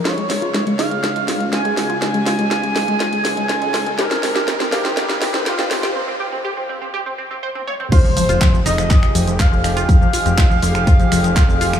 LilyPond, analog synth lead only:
\new Staff \with { instrumentName = "Analog synth lead" } { \time 4/4 \key f \minor \tempo 4 = 122 des''4. f''4. aes''4~ | aes''1 | bes'4. g'4. f'4 | r1 |
c''4. ees''4. f''4~ | f''1 | }